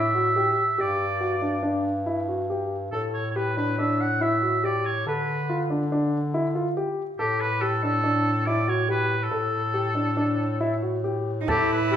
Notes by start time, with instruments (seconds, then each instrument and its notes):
Already playing: bass clarinet A2, oboe E5
0.15 grand piano F#4
0.36 grand piano G4
0.77 bass clarinet G2, grand piano G4, oboe D5
1.21 grand piano F#4
1.42 grand piano D4
1.63 grand piano D4
2.06 grand piano E4
2.28 grand piano F#4
2.50 grand piano G4
2.92 bass clarinet A2, oboe A4, grand piano A4
3.14 oboe C#5
3.31 oboe C#5
3.36 grand piano G4, oboe B4
3.57 grand piano D4, oboe B4
3.78 grand piano D4, oboe E5
4.01 oboe F#5
4.21 grand piano E4, oboe E5
4.42 grand piano F#4
4.64 grand piano G4, oboe D5
4.85 oboe C#5
5.06 bass clarinet D3, grand piano A4, oboe B4
5.50 grand piano F4
5.70 grand piano D4
5.92 grand piano D4
6.34 grand piano E4
6.55 grand piano F4
6.77 grand piano G4
7.18 bass clarinet A2, oboe G4, grand piano A4
7.40 oboe B4
7.61 grand piano G4, oboe A4
7.83 grand piano D4, oboe A4
8.04 grand piano D4
8.46 grand piano E4, oboe D5
8.68 grand piano F#4, oboe C#5
8.89 grand piano G4, oboe B4
9.23 oboe A4
9.31 bass clarinet A2, grand piano A4
9.74 grand piano G4
9.95 grand piano D4
10.17 grand piano D4
10.60 grand piano E4
10.82 grand piano F#4
11.04 grand piano G4
11.41 cello D#4
11.48 bass clarinet A2, cello E4, oboe G4, grand piano A4, crotales A6, frame drum
11.72 oboe B4
11.91 grand piano G4, oboe A4